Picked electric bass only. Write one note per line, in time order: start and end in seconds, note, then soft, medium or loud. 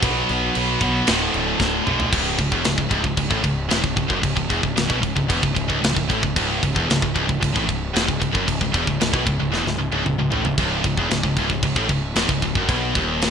0.02 0.22 B1 medium
0.30 0.49 B1 medium
0.56 0.75 B1 medium
0.81 1.00 B1 medium
1.08 1.28 D1 medium
1.35 1.54 D1 loud
1.60 1.80 D1 medium
1.87 2.06 B1 medium
2.13 2.38 C#1 loud
2.39 2.51 C#1 medium
2.52 2.65 E1 medium
2.66 2.78 C#1 medium
2.78 2.90 C#1 medium
2.90 3.03 C#1 medium
3.04 3.17 C#1 medium
3.18 3.30 C#1 medium
3.31 3.43 A1 loud
3.44 3.69 C#1 medium
3.72 3.83 E1 medium
3.84 3.96 C#1 medium
3.97 4.09 C#1 medium
4.10 4.23 F#1 loud
4.23 4.36 C#1 medium
4.37 4.50 C#1 medium
4.50 4.63 E1 medium
4.63 4.76 C#1 medium
4.78 4.89 C#1 medium
4.90 5.02 B1 medium
5.03 5.16 C#1 medium
5.16 5.29 C#1 medium
5.30 5.43 E1 medium
5.43 5.55 C#1 medium
5.57 5.69 C#1 medium
5.70 5.82 C#1 medium
5.83 5.95 C#1 medium
5.97 6.09 C#1 medium
6.10 6.22 A1 medium
6.23 6.35 C#1 medium
6.37 6.61 C#1 loud
6.63 6.75 C#1 medium
6.76 6.88 E1 loud
6.88 7.01 C#1 medium
7.02 7.14 C#1 medium
7.16 7.28 C#1 loud
7.30 7.41 C#1 medium
7.42 7.54 C#1 medium
7.56 7.68 A1 loud
7.69 7.93 C#1 medium
7.95 8.07 E1 loud
8.09 8.21 C#1 medium
8.22 8.34 C#1 medium
8.35 8.47 F#1 loud
8.48 8.60 C#1 medium
8.61 8.73 C#1 medium
8.75 8.87 E1 loud
8.87 9.00 C#1 medium
9.01 9.13 C#1 medium
9.13 9.26 B1 medium
9.26 9.39 C#1 medium
9.41 9.51 C#1 medium
9.52 9.64 E1 loud
9.65 9.77 C#1 medium
9.78 9.91 C#1 medium
9.91 10.04 C#1 medium
10.04 10.17 C#1 medium
10.17 10.30 C#1 medium
10.31 10.44 A1 medium
10.44 10.57 C#1 medium
10.58 10.83 C#1 medium
10.84 10.97 C#1 medium
10.98 11.09 E1 medium
11.09 11.23 C#1 medium
11.23 11.36 C#1 medium
11.37 11.49 C#1 medium
11.50 11.63 C#1 medium
11.63 11.75 C#1 medium
11.76 11.89 A1 medium
11.89 12.15 C#1 medium
12.16 12.28 E1 medium
12.29 12.42 C#1 medium
12.43 12.54 C#1 medium
12.55 12.68 F#1 loud
12.69 12.94 B1 loud
12.95 13.30 D#1 loud